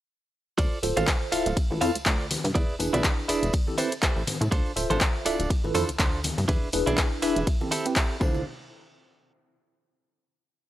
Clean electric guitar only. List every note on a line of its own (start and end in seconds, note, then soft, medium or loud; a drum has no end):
0.58 0.78 F4 loud
0.58 0.78 A4 loud
0.58 0.78 C5 medium
0.58 0.78 D5 loud
0.97 1.15 F4 medium
0.97 1.15 A4 medium
0.97 1.15 C5 medium
0.97 1.15 F5 medium
1.32 1.57 F4 medium
1.32 1.57 A4 medium
1.32 1.57 C5 medium
1.32 1.57 F5 medium
1.81 1.95 F4 loud
1.81 1.95 A4 medium
1.81 1.95 C5 loud
1.81 1.95 F5 loud
2.05 2.25 F4 medium
2.05 2.25 A4 medium
2.05 2.25 C5 medium
2.05 2.25 D5 medium
2.44 muted clean electric guitar stroke soft
2.55 2.74 E4 medium
2.55 2.74 G#4 loud
2.55 2.74 B4 loud
2.55 2.74 D5 loud
2.93 3.11 E4 medium
2.93 3.11 G#4 medium
2.93 3.11 B4 medium
2.93 3.11 D5 medium
3.28 3.53 E4 medium
3.28 3.54 G#4 medium
3.28 3.54 B4 medium
3.28 3.54 D5 loud
3.78 3.92 E4 loud
3.78 3.92 G4 medium
3.78 3.92 A4 loud
3.78 3.92 C5 loud
4.02 4.22 E4 medium
4.02 4.22 G4 medium
4.02 4.22 A4 medium
4.02 4.22 C5 loud
4.41 muted clean electric guitar stroke soft
4.51 4.71 D4 loud
4.51 4.71 F4 loud
4.51 4.71 A4 loud
4.51 4.71 C5 loud
4.90 5.08 D4 medium
4.90 5.08 F4 medium
4.90 5.08 A4 medium
4.90 5.08 C5 medium
5.25 5.50 D4 medium
5.25 5.50 F4 medium
5.25 5.50 A4 medium
5.25 5.50 D5 medium
5.75 5.89 D4 loud
5.75 5.89 F4 loud
5.75 5.89 A4 loud
5.75 5.89 C5 loud
5.99 6.19 D4 medium
5.99 6.19 F4 medium
5.99 6.19 A4 medium
5.99 6.19 C5 loud
6.38 muted clean electric guitar stroke soft
6.48 6.68 D4 loud
6.48 6.68 E4 loud
6.48 6.68 G#4 medium
6.48 6.68 B4 loud
6.86 7.05 D4 medium
6.86 7.05 E4 medium
6.86 7.05 G#4 medium
6.86 7.05 D5 medium
7.22 7.47 D4 medium
7.22 7.47 E4 medium
7.22 7.47 G#4 medium
7.22 7.47 B4 loud
7.71 7.86 C4 loud
7.71 7.86 E4 loud
7.71 7.86 G4 medium
7.71 7.86 A4 loud
7.96 8.15 C4 medium
7.96 8.15 E4 medium
7.96 8.15 G4 medium
7.96 8.16 A4 medium
8.20 8.44 D4 medium
8.20 8.44 F4 medium
8.20 8.44 C5 medium